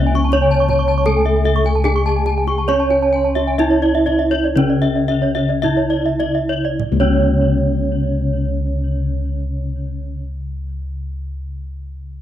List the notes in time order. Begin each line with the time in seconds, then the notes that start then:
Already playing: C#2 C#3 C#4
0.07 G#5
0.15 C#6, kendang slap
0.24 A5
0.32 D4 C#5 C#6, kendang slap, kendang high
0.42 G#5
0.51 A5
0.60 C#6
0.69 A5, kendang slap, kendang low
0.79 C#6
0.88 A5
0.98 C#6
1.06 A3 A4 A5, kendang low
1.17 G#5
1.25 E5, kendang slap
1.36 G#5
1.45 E5, kendang slap
1.56 C#6
1.65 G#5, kendang slap
1.75 A5
1.84 D4 G#4 G#5, kendang low
1.96 C#6
2.06 A5
2.16 G#5
2.26 A5, kendang high
2.38 G#5
2.47 C#6, kendang slap
2.58 A5
2.68 C#4 C#5 C#6, kendang high
2.80 A5
2.90 G#5, kendang slap
3.02 A5
3.13 G#5
3.25 A5
3.35 E5, kendang slap
3.47 G#5
3.58 D4 E4 E5, kendang slap, kendang high
3.70 C#5
3.82 D5
3.95 E5
4.06 D5, kendang low
4.19 E5
4.31 C#5, kendang slap
4.44 D5
4.56 C#3 C#4 C#5, kendang high, kendang low
4.70 D5
4.82 E5, kendang slap
4.96 D5
5.08 E5, kendang slap
5.22 C#5
5.35 E5, kendang slap
5.49 D5
5.62 D4 E4 E5, kendang slap, kendang low
5.77 C#5
5.90 D5
6.06 E5
6.20 D5, kendang high
6.35 E5
6.49 C#5
6.65 D5
6.80 kendang low
6.92 C#2
7.00 C#3 C#4 C#5